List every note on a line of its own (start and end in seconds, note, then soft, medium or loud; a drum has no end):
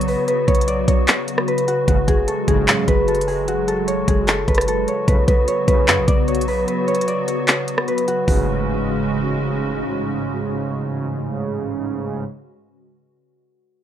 0.00 0.16 B1 loud
0.00 5.04 C#3 medium
0.00 1.85 F#3 medium
0.00 1.85 B3 medium
0.00 5.04 F#4 medium
0.00 0.48 A4 medium
0.00 0.47 C#5 medium
0.00 closed hi-hat medium
0.08 0.27 B4 medium
0.08 open hi-hat medium
0.28 1.48 B4 medium
0.28 closed hi-hat medium
0.48 0.86 B1 loud
0.48 0.74 C#5 medium
0.48 kick loud
0.48 closed hi-hat medium
0.55 closed hi-hat medium
0.61 closed hi-hat medium
0.68 0.94 D5 loud
0.68 closed hi-hat medium
0.88 1.07 B1 loud
0.88 2.79 C#5 medium
0.88 kick medium
0.88 closed hi-hat medium
1.08 clap loud
1.08 closed hi-hat medium
1.28 closed hi-hat medium
1.38 cross-stick loud
1.48 2.87 B4 medium
1.48 closed hi-hat soft
1.58 closed hi-hat medium
1.68 1.87 F#4 medium
1.68 closed hi-hat medium
1.88 2.07 F#1 loud
1.88 1.96 A1 medium
1.88 1.96 G#2 medium
1.88 1.96 C#3 medium
1.88 5.05 F#3 medium
1.88 5.05 G#3 medium
1.88 3.48 F#4 medium
1.88 kick loud
1.88 closed hi-hat medium
2.07 2.27 F#1 loud
2.07 2.34 G#4 medium
2.07 kick loud
2.07 closed hi-hat medium
2.28 2.54 A4 medium
2.28 closed hi-hat medium
2.48 2.67 F#1 loud
2.48 2.86 A1 loud
2.48 2.86 G#2 medium
2.48 2.86 C#3 loud
2.48 3.14 G#4 medium
2.48 kick medium
2.48 closed hi-hat medium
2.68 clap loud
2.68 closed hi-hat medium
2.88 4.04 F#1 loud
2.88 4.48 B4 medium
2.88 kick loud
2.88 closed hi-hat medium
3.08 3.34 A4 medium
3.08 closed hi-hat soft
3.15 closed hi-hat medium
3.21 closed hi-hat medium
3.28 3.74 G#4 medium
3.28 open hi-hat medium
3.48 5.92 F#4 medium
3.48 closed hi-hat medium
3.68 4.14 A4 medium
3.68 closed hi-hat medium
3.88 4.88 C#5 medium
3.88 closed hi-hat medium
4.08 4.46 F#1 loud
4.08 4.34 G#4 medium
4.08 kick medium
4.08 closed hi-hat medium
4.28 4.68 A4 medium
4.28 clap loud
4.28 closed hi-hat medium
4.48 4.86 F#1 loud
4.48 5.07 B4 medium
4.48 kick loud
4.48 closed hi-hat soft
4.55 cross-stick loud
4.55 closed hi-hat medium
4.61 closed hi-hat medium
4.68 6.88 A4 medium
4.68 closed hi-hat medium
4.88 5.47 C#5 medium
4.88 closed hi-hat medium
5.08 5.27 B1 loud
5.08 5.16 F#2 medium
5.08 5.16 C#3 loud
5.08 8.25 C#3 medium
5.08 8.25 F#3 medium
5.08 8.25 B3 medium
5.08 8.25 F#4 loud
5.08 5.27 B4 medium
5.08 kick loud
5.08 closed hi-hat medium
5.28 5.47 B1 loud
5.28 5.67 B4 medium
5.28 kick loud
5.28 closed hi-hat medium
5.48 6.14 C#5 medium
5.48 closed hi-hat medium
5.68 5.89 B1 loud
5.68 6.06 F#2 medium
5.68 6.06 C#3 loud
5.68 6.48 B4 medium
5.68 kick loud
5.68 closed hi-hat medium
5.88 5.99 F#2 loud
5.88 clap loud
5.88 closed hi-hat medium
5.98 6.07 B1 loud
6.08 6.66 B1 loud
6.08 6.34 D5 medium
6.08 kick loud
6.08 closed hi-hat medium
6.28 6.87 C#5 medium
6.28 closed hi-hat soft
6.35 closed hi-hat medium
6.41 closed hi-hat medium
6.48 6.67 B4 medium
6.48 open hi-hat medium
6.68 7.88 B4 medium
6.68 closed hi-hat medium
6.88 7.14 C#5 medium
6.88 closed hi-hat soft
6.95 closed hi-hat medium
7.01 closed hi-hat medium
7.08 7.34 D5 medium
7.08 closed hi-hat medium
7.28 9.19 C#5 medium
7.28 closed hi-hat medium
7.48 clap loud
7.48 closed hi-hat medium
7.68 closed hi-hat medium
7.78 cross-stick loud
7.88 9.93 B4 medium
7.88 closed hi-hat soft
7.98 closed hi-hat medium
8.08 8.27 F#4 medium
8.08 closed hi-hat medium
8.28 9.84 F#1 loud
8.28 12.24 A1 medium
8.28 12.24 G#2 medium
8.28 12.24 C#3 loud
8.28 12.24 C#3 medium
8.28 12.24 G#3 medium
8.28 12.24 C#4 medium
8.28 12.24 F#4 loud
8.28 10.72 F#4 medium
8.28 kick loud
8.28 open hi-hat medium